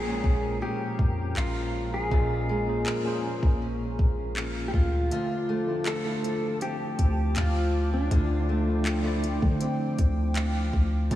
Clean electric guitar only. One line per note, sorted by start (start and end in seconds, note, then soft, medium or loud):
0.00 0.62 G#4 medium
0.62 1.37 G4 loud
1.38 1.93 F4 medium
1.94 4.76 G#4 medium
4.68 4.74 G4 medium
4.75 5.90 F4 medium
5.87 6.62 A4 medium
6.62 7.39 G4 loud
7.37 7.89 F4 medium
7.94 10.70 D4 medium